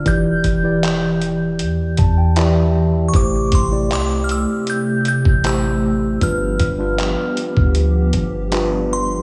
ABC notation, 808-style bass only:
X:1
M:4/4
L:1/16
Q:1/4=78
K:Am
V:1 name="808-style bass" clef=bass
E,,,2 E,,,6 E,,2 E,,6 | A,,,2 A,,,2 C,,3 z4 A,,,4- A,,, | G,,,2 G,,,3 z2 D,,3 G,,,6 |]